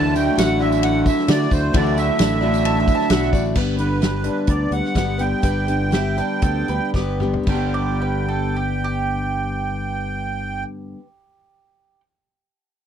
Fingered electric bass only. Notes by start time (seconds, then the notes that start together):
Already playing: D2
0.38 A1
1.28 D3
1.51 D2
1.74 D2
2.20 A1
3.10 B1
3.33 A1
3.56 G1
4.48 D2
4.71 D2
4.96 G1
5.43 G1
6.42 D2
6.69 D2
6.94 G1
7.47 G1